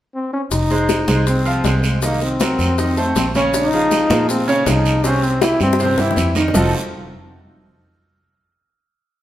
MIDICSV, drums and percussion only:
0, 0, Header, 1, 2, 480
1, 0, Start_track
1, 0, Key_signature, -4, "minor"
1, 0, Tempo, 376884
1, 655, Time_signature, 4, 2, 24, 8
1, 11749, End_track
2, 0, Start_track
2, 0, Title_t, "Drums"
2, 653, Note_on_c, 9, 70, 70
2, 653, Note_on_c, 9, 74, 66
2, 654, Note_on_c, 9, 63, 31
2, 657, Note_on_c, 9, 60, 67
2, 780, Note_off_c, 9, 74, 0
2, 781, Note_off_c, 9, 63, 0
2, 781, Note_off_c, 9, 70, 0
2, 784, Note_off_c, 9, 60, 0
2, 894, Note_on_c, 9, 70, 31
2, 895, Note_on_c, 9, 63, 35
2, 1021, Note_off_c, 9, 70, 0
2, 1022, Note_off_c, 9, 63, 0
2, 1133, Note_on_c, 9, 63, 65
2, 1134, Note_on_c, 9, 70, 61
2, 1135, Note_on_c, 9, 60, 60
2, 1140, Note_on_c, 9, 73, 73
2, 1260, Note_off_c, 9, 63, 0
2, 1262, Note_off_c, 9, 70, 0
2, 1263, Note_off_c, 9, 60, 0
2, 1268, Note_off_c, 9, 73, 0
2, 1373, Note_on_c, 9, 63, 82
2, 1377, Note_on_c, 9, 73, 68
2, 1381, Note_on_c, 9, 70, 26
2, 1501, Note_off_c, 9, 63, 0
2, 1505, Note_off_c, 9, 73, 0
2, 1509, Note_off_c, 9, 70, 0
2, 1613, Note_on_c, 9, 63, 38
2, 1615, Note_on_c, 9, 60, 63
2, 1616, Note_on_c, 9, 74, 68
2, 1617, Note_on_c, 9, 70, 63
2, 1741, Note_off_c, 9, 63, 0
2, 1743, Note_off_c, 9, 60, 0
2, 1743, Note_off_c, 9, 74, 0
2, 1745, Note_off_c, 9, 70, 0
2, 1858, Note_on_c, 9, 63, 32
2, 1858, Note_on_c, 9, 70, 31
2, 1985, Note_off_c, 9, 63, 0
2, 1985, Note_off_c, 9, 70, 0
2, 2088, Note_on_c, 9, 63, 74
2, 2096, Note_on_c, 9, 60, 72
2, 2096, Note_on_c, 9, 61, 82
2, 2098, Note_on_c, 9, 70, 66
2, 2101, Note_on_c, 9, 73, 67
2, 2216, Note_off_c, 9, 63, 0
2, 2224, Note_off_c, 9, 60, 0
2, 2224, Note_off_c, 9, 61, 0
2, 2225, Note_off_c, 9, 70, 0
2, 2228, Note_off_c, 9, 73, 0
2, 2335, Note_on_c, 9, 70, 28
2, 2336, Note_on_c, 9, 63, 33
2, 2340, Note_on_c, 9, 73, 75
2, 2463, Note_off_c, 9, 63, 0
2, 2463, Note_off_c, 9, 70, 0
2, 2468, Note_off_c, 9, 73, 0
2, 2574, Note_on_c, 9, 70, 73
2, 2578, Note_on_c, 9, 60, 62
2, 2581, Note_on_c, 9, 63, 33
2, 2586, Note_on_c, 9, 74, 70
2, 2701, Note_off_c, 9, 70, 0
2, 2706, Note_off_c, 9, 60, 0
2, 2708, Note_off_c, 9, 63, 0
2, 2713, Note_off_c, 9, 74, 0
2, 2816, Note_on_c, 9, 70, 27
2, 2823, Note_on_c, 9, 63, 34
2, 2826, Note_on_c, 9, 60, 33
2, 2943, Note_off_c, 9, 70, 0
2, 2950, Note_off_c, 9, 63, 0
2, 2953, Note_off_c, 9, 60, 0
2, 3058, Note_on_c, 9, 70, 66
2, 3063, Note_on_c, 9, 60, 64
2, 3065, Note_on_c, 9, 63, 99
2, 3067, Note_on_c, 9, 73, 78
2, 3185, Note_off_c, 9, 70, 0
2, 3190, Note_off_c, 9, 60, 0
2, 3192, Note_off_c, 9, 63, 0
2, 3194, Note_off_c, 9, 73, 0
2, 3298, Note_on_c, 9, 70, 28
2, 3306, Note_on_c, 9, 63, 35
2, 3307, Note_on_c, 9, 60, 33
2, 3312, Note_on_c, 9, 73, 69
2, 3425, Note_off_c, 9, 70, 0
2, 3434, Note_off_c, 9, 63, 0
2, 3435, Note_off_c, 9, 60, 0
2, 3440, Note_off_c, 9, 73, 0
2, 3543, Note_on_c, 9, 70, 70
2, 3545, Note_on_c, 9, 60, 67
2, 3547, Note_on_c, 9, 63, 35
2, 3551, Note_on_c, 9, 74, 65
2, 3671, Note_off_c, 9, 70, 0
2, 3672, Note_off_c, 9, 60, 0
2, 3674, Note_off_c, 9, 63, 0
2, 3678, Note_off_c, 9, 74, 0
2, 3784, Note_on_c, 9, 70, 29
2, 3786, Note_on_c, 9, 63, 36
2, 3787, Note_on_c, 9, 60, 33
2, 3911, Note_off_c, 9, 70, 0
2, 3913, Note_off_c, 9, 63, 0
2, 3914, Note_off_c, 9, 60, 0
2, 4022, Note_on_c, 9, 70, 72
2, 4025, Note_on_c, 9, 60, 70
2, 4025, Note_on_c, 9, 61, 74
2, 4025, Note_on_c, 9, 63, 85
2, 4033, Note_on_c, 9, 73, 69
2, 4150, Note_off_c, 9, 70, 0
2, 4152, Note_off_c, 9, 60, 0
2, 4152, Note_off_c, 9, 61, 0
2, 4152, Note_off_c, 9, 63, 0
2, 4161, Note_off_c, 9, 73, 0
2, 4263, Note_on_c, 9, 70, 31
2, 4269, Note_on_c, 9, 63, 75
2, 4272, Note_on_c, 9, 73, 71
2, 4390, Note_off_c, 9, 70, 0
2, 4397, Note_off_c, 9, 63, 0
2, 4399, Note_off_c, 9, 73, 0
2, 4506, Note_on_c, 9, 70, 72
2, 4506, Note_on_c, 9, 74, 68
2, 4507, Note_on_c, 9, 60, 71
2, 4508, Note_on_c, 9, 63, 36
2, 4633, Note_off_c, 9, 70, 0
2, 4633, Note_off_c, 9, 74, 0
2, 4634, Note_off_c, 9, 60, 0
2, 4635, Note_off_c, 9, 63, 0
2, 4744, Note_on_c, 9, 70, 29
2, 4745, Note_on_c, 9, 63, 30
2, 4872, Note_off_c, 9, 70, 0
2, 4873, Note_off_c, 9, 63, 0
2, 4983, Note_on_c, 9, 70, 62
2, 4985, Note_on_c, 9, 60, 52
2, 4985, Note_on_c, 9, 73, 77
2, 4986, Note_on_c, 9, 63, 66
2, 5111, Note_off_c, 9, 70, 0
2, 5112, Note_off_c, 9, 60, 0
2, 5112, Note_off_c, 9, 73, 0
2, 5113, Note_off_c, 9, 63, 0
2, 5221, Note_on_c, 9, 73, 70
2, 5226, Note_on_c, 9, 63, 101
2, 5227, Note_on_c, 9, 70, 28
2, 5348, Note_off_c, 9, 73, 0
2, 5353, Note_off_c, 9, 63, 0
2, 5354, Note_off_c, 9, 70, 0
2, 5461, Note_on_c, 9, 74, 65
2, 5462, Note_on_c, 9, 60, 64
2, 5468, Note_on_c, 9, 63, 37
2, 5471, Note_on_c, 9, 70, 61
2, 5589, Note_off_c, 9, 60, 0
2, 5589, Note_off_c, 9, 74, 0
2, 5596, Note_off_c, 9, 63, 0
2, 5598, Note_off_c, 9, 70, 0
2, 5702, Note_on_c, 9, 63, 31
2, 5711, Note_on_c, 9, 70, 29
2, 5830, Note_off_c, 9, 63, 0
2, 5838, Note_off_c, 9, 70, 0
2, 5940, Note_on_c, 9, 60, 76
2, 5940, Note_on_c, 9, 61, 81
2, 5942, Note_on_c, 9, 63, 76
2, 5942, Note_on_c, 9, 73, 70
2, 5947, Note_on_c, 9, 70, 72
2, 6068, Note_off_c, 9, 60, 0
2, 6068, Note_off_c, 9, 61, 0
2, 6069, Note_off_c, 9, 73, 0
2, 6070, Note_off_c, 9, 63, 0
2, 6074, Note_off_c, 9, 70, 0
2, 6180, Note_on_c, 9, 73, 76
2, 6181, Note_on_c, 9, 63, 35
2, 6185, Note_on_c, 9, 70, 33
2, 6308, Note_off_c, 9, 63, 0
2, 6308, Note_off_c, 9, 73, 0
2, 6313, Note_off_c, 9, 70, 0
2, 6416, Note_on_c, 9, 74, 65
2, 6418, Note_on_c, 9, 60, 71
2, 6418, Note_on_c, 9, 63, 32
2, 6424, Note_on_c, 9, 70, 67
2, 6543, Note_off_c, 9, 74, 0
2, 6546, Note_off_c, 9, 60, 0
2, 6546, Note_off_c, 9, 63, 0
2, 6551, Note_off_c, 9, 70, 0
2, 6658, Note_on_c, 9, 60, 29
2, 6659, Note_on_c, 9, 63, 36
2, 6664, Note_on_c, 9, 70, 29
2, 6785, Note_off_c, 9, 60, 0
2, 6787, Note_off_c, 9, 63, 0
2, 6791, Note_off_c, 9, 70, 0
2, 6896, Note_on_c, 9, 73, 76
2, 6897, Note_on_c, 9, 60, 61
2, 6900, Note_on_c, 9, 63, 99
2, 6906, Note_on_c, 9, 70, 68
2, 7023, Note_off_c, 9, 73, 0
2, 7024, Note_off_c, 9, 60, 0
2, 7028, Note_off_c, 9, 63, 0
2, 7034, Note_off_c, 9, 70, 0
2, 7131, Note_on_c, 9, 73, 65
2, 7138, Note_on_c, 9, 60, 69
2, 7141, Note_on_c, 9, 63, 36
2, 7142, Note_on_c, 9, 70, 27
2, 7258, Note_off_c, 9, 73, 0
2, 7265, Note_off_c, 9, 60, 0
2, 7268, Note_off_c, 9, 63, 0
2, 7269, Note_off_c, 9, 70, 0
2, 7296, Note_on_c, 9, 60, 90
2, 7373, Note_on_c, 9, 74, 61
2, 7381, Note_on_c, 9, 70, 66
2, 7424, Note_off_c, 9, 60, 0
2, 7453, Note_on_c, 9, 61, 87
2, 7500, Note_off_c, 9, 74, 0
2, 7508, Note_off_c, 9, 70, 0
2, 7580, Note_off_c, 9, 61, 0
2, 7612, Note_on_c, 9, 61, 82
2, 7612, Note_on_c, 9, 63, 35
2, 7626, Note_on_c, 9, 70, 29
2, 7740, Note_off_c, 9, 61, 0
2, 7740, Note_off_c, 9, 63, 0
2, 7753, Note_off_c, 9, 70, 0
2, 7778, Note_on_c, 9, 61, 107
2, 7849, Note_on_c, 9, 63, 79
2, 7853, Note_on_c, 9, 73, 66
2, 7864, Note_on_c, 9, 70, 69
2, 7905, Note_off_c, 9, 61, 0
2, 7976, Note_off_c, 9, 63, 0
2, 7980, Note_off_c, 9, 73, 0
2, 7991, Note_off_c, 9, 70, 0
2, 8089, Note_on_c, 9, 63, 72
2, 8090, Note_on_c, 9, 73, 73
2, 8098, Note_on_c, 9, 61, 83
2, 8105, Note_on_c, 9, 70, 32
2, 8216, Note_off_c, 9, 63, 0
2, 8218, Note_off_c, 9, 73, 0
2, 8225, Note_off_c, 9, 61, 0
2, 8232, Note_off_c, 9, 70, 0
2, 8254, Note_on_c, 9, 61, 82
2, 8329, Note_on_c, 9, 64, 99
2, 8332, Note_on_c, 9, 74, 86
2, 8335, Note_off_c, 9, 61, 0
2, 8335, Note_on_c, 9, 61, 91
2, 8338, Note_on_c, 9, 70, 94
2, 8456, Note_off_c, 9, 64, 0
2, 8460, Note_off_c, 9, 74, 0
2, 8462, Note_off_c, 9, 61, 0
2, 8465, Note_off_c, 9, 70, 0
2, 11749, End_track
0, 0, End_of_file